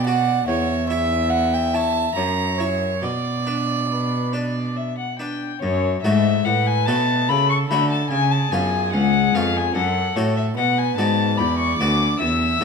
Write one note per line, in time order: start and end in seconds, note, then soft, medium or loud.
0.00 0.45 B2 medium
0.00 0.47 B2 medium
0.00 0.47 D5 medium
0.07 0.37 F#4 soft
0.07 0.37 D5 medium
0.07 0.47 F#5 medium
0.47 2.12 E2 medium
0.47 0.89 C#5 medium
0.47 2.18 E5 medium
0.90 1.51 E4 soft
0.90 1.51 C#5 medium
0.90 1.32 E5 medium
1.30 1.55 F#5 medium
1.54 1.76 G5 medium
1.74 2.05 E4 soft
1.74 2.05 C#5 soft
1.74 2.15 A5 medium
2.15 3.04 F#2 medium
2.15 2.99 F#2 soft
2.15 3.02 C#5 medium
2.15 2.60 A#5 medium
2.59 2.91 E4 soft
2.59 3.05 C#5 medium
2.59 2.91 C#5 soft
3.02 5.38 B2 soft
3.02 5.42 B2 medium
3.02 3.79 D5 medium
3.02 4.76 D5 medium
3.47 4.09 D4 soft
3.47 4.09 B4 soft
3.88 4.35 B4 medium
4.33 4.96 D4 soft
4.33 4.96 B4 soft
4.33 4.78 D5 medium
4.76 4.97 E5 medium
4.98 5.18 F#5 medium
5.19 5.50 D4 soft
5.19 5.51 B4 soft
5.19 5.61 G5 medium
5.62 6.01 F#2 medium
5.62 6.00 F#2 medium
5.62 6.01 C#5 medium
6.02 6.45 G#2 medium
6.02 6.42 G#2 medium
6.02 6.64 A3 soft
6.02 6.64 F#4 soft
6.02 6.64 C#5 medium
6.02 6.46 E5 medium
6.45 6.83 A2 medium
6.45 6.89 A2 medium
6.45 7.31 B4 medium
6.45 6.68 F#5 medium
6.67 6.87 G#5 medium
6.86 7.25 B2 medium
6.86 7.31 B2 medium
6.86 7.47 A3 soft
6.86 7.47 F#4 soft
6.86 7.48 C#5 medium
6.86 7.30 A5 medium
7.29 7.70 C#3 medium
7.29 7.67 C#3 medium
7.29 8.11 A4 medium
7.29 7.49 B5 loud
7.50 7.58 C#6 medium
7.70 8.10 D3 medium
7.70 8.07 D3 medium
7.70 8.00 A3 soft
7.70 8.00 F#4 soft
7.70 8.00 C#5 soft
7.70 7.90 B5 medium
7.91 8.10 A5 medium
8.10 8.48 C#3 medium
8.10 8.51 C#3 medium
8.10 9.73 G#4 medium
8.10 8.33 G#5 medium
8.31 8.53 A5 medium
8.51 8.89 F#2 medium
8.51 8.96 F#2 medium
8.51 9.12 B3 soft
8.51 9.12 F4 soft
8.51 9.12 C#5 soft
8.51 8.92 G#5 medium
8.93 9.31 C#2 medium
8.93 9.35 C#2 medium
8.93 9.36 F#5 medium
9.35 9.72 F2 medium
9.35 9.76 F2 medium
9.35 9.65 B3 soft
9.35 9.65 F4 soft
9.35 9.65 C#5 soft
9.35 9.58 F5 medium
9.57 9.75 G#5 medium
9.75 10.12 F#2 medium
9.75 10.16 F#2 medium
9.75 10.55 A4 medium
9.75 10.17 F#5 medium
10.16 10.53 A2 medium
10.16 10.57 A2 medium
10.16 10.46 A3 soft
10.16 10.46 F#4 soft
10.16 10.36 C#5 medium
10.16 10.46 C#5 soft
10.37 10.45 E5 medium
10.57 10.97 B2 medium
10.57 10.94 B2 medium
10.57 11.37 B4 medium
10.57 10.80 F#5 medium
10.78 10.96 G#5 medium
10.97 11.40 G#2 medium
10.97 11.35 G#2 medium
10.97 11.57 B3 soft
10.97 11.57 F#4 soft
10.97 11.58 D5 soft
10.97 11.39 A5 medium
11.37 11.79 E2 medium
11.37 11.76 E2 medium
11.37 12.22 D5 medium
11.37 11.58 B5 medium
11.59 11.78 C#6 medium
11.79 12.20 D2 medium
11.79 12.17 D2 medium
11.79 12.39 B3 soft
11.79 12.39 F#4 soft
11.79 12.39 D5 soft
11.79 12.19 D6 medium
12.20 12.57 E2 soft
12.20 12.60 E2 medium
12.20 12.64 E5 medium
12.20 12.64 E6 medium
12.61 12.64 G#2 medium